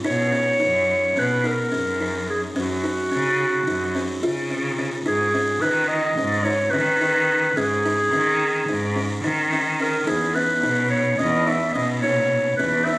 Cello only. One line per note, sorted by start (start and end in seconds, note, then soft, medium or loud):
0.05 0.53 B2 medium
0.61 1.09 F#2 medium
1.16 1.64 B2 medium
1.72 2.44 F#2 medium
2.55 3.03 F#2 medium
3.11 3.59 C#3 medium
3.67 4.15 F#2 medium
4.23 4.95 C#3 medium
5.06 5.54 G#2 medium
5.62 6.10 D#3 medium
6.19 6.66 G#2 medium
6.74 7.46 D#3 medium
7.57 8.05 G#2 medium
8.13 8.61 D#3 medium
8.69 9.17 G#2 medium
9.24 9.97 D#3 medium
10.08 10.56 E2 medium
10.63 11.12 B2 medium
11.19 11.68 E2 medium
11.75 12.48 B2 medium
12.59 12.98 E2 medium